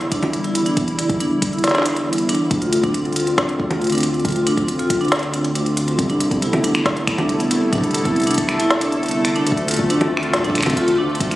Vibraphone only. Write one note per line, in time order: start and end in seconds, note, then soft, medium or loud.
0.12 0.20 D4 loud
0.44 0.53 E4 medium
0.66 0.75 D4 medium
0.99 1.07 E4 medium
1.20 1.29 D4 loud
1.53 1.62 E4 medium
1.75 1.83 D4 loud
2.07 2.16 E4 medium
2.29 2.38 D4 loud
2.62 2.70 F4 medium
2.84 2.92 D4 loud
3.16 3.25 F4 medium
3.38 3.46 D4 loud
3.70 3.79 F4 medium
3.92 4.01 D4 loud
4.25 4.33 F4 medium
4.47 4.55 D4 loud
4.79 4.88 F4 medium
5.01 5.10 D4 loud
5.33 5.42 D4 medium
5.55 5.64 D4 medium
5.88 5.98 C4 medium
6.10 6.18 D4 loud
6.42 6.51 E4 medium
6.64 6.73 D4 medium
6.96 7.05 E4 medium
7.18 7.27 D4 loud
7.51 7.60 E4 medium
7.73 7.81 D4 loud
8.05 8.14 E4 medium
8.27 8.36 D4 loud
8.60 8.68 E4 medium
8.81 8.90 D4 loud
9.14 9.23 E4 medium
9.36 9.44 D4 loud
9.68 9.77 F4 medium
9.90 9.99 D4 loud
10.23 10.31 F4 medium
10.44 10.53 D4 loud
10.77 10.86 F4 medium
10.99 11.07 D4 loud
11.31 11.36 F4 medium